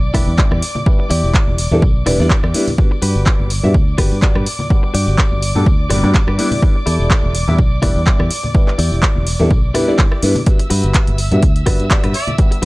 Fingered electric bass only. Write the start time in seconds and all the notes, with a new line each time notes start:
Already playing: B1
0.14 E1
0.27 E2
0.51 E2
1.11 E2
1.24 E1
1.47 E1
1.71 E2
1.82 B1
2.06 E1
2.19 E2
2.43 E2
3.02 G2
3.16 G1
3.40 G1
3.64 G2
3.74 D2
3.98 G1
4.12 G2
4.35 G2
4.94 G2
5.08 G1
5.32 G1
5.56 G2
5.66 D2
5.91 G1
6.04 G2
6.28 G2
6.87 E2
7.00 E1
7.24 E1
7.48 E2
7.59 B1
7.83 E1
7.96 E2
8.20 E2
8.79 E2
8.92 E1
9.16 E1
9.40 E2
9.51 B1
10.23 G2
10.71 G2
10.84 G1
11.08 G1
11.32 G2
11.43 D2
11.67 G1
11.80 G2
12.04 G2